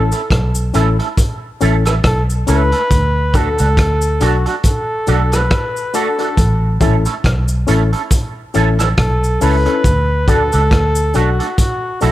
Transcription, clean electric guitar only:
0.12 A3 C#4 E4 A4
0.74 A3 C#4 E4 A4
0.99 A3 C#4 E4 A4
1.61 A3 C#4 E4 A4
1.86 A3 C#4 E4 A4
2.47 A3 C#4 E4 A4
2.72 A3 C#4 E4 A4
3.34 A3 D4 F#4 A4
3.59 A3 D4 F#4 A4
4.21 A3 D4 F#4 A4
4.46 A3 D4 F#4 A4
5.07 A3 D4 F#4 A4
5.32 A3 D4 F#4 A4
5.94 A3 D4 F#4 A4
6.19 A3 D4 F#4 A4
6.81 A3 C#4 E4 A4
7.06 A3 C#4 E4 A4
7.67 A3 C#4 E4 A4
7.93 A3 C#4 E4 A4
8.54 A3 C#4 E4 A4
8.79 A3 C#4 E4 A4
9.41 A3 C#4 E4 A4
9.66 A3 C#4 E4 A4
10.27 A3 D4 F#4 A4
10.53 A3 D4 F#4 A4
11.14 A3 D4 F#4 A4
11.39 A3 D4 F#4 A4
12.01 A3 D4 F#4 A4

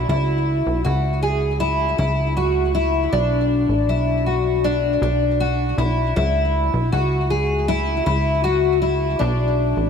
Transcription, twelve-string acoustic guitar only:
0.09 E4
0.85 F#4
1.23 G#4
1.60 E4
1.98 E4
2.37 F#4
2.75 E4
3.13 D4
3.89 E4
4.26 F#4
4.64 D4
5.03 D4
5.40 F#4
5.78 E4
6.16 E4
6.92 F#4
7.30 G#4
7.68 E4
8.06 E4
8.44 F#4
8.82 E4
9.19 D4

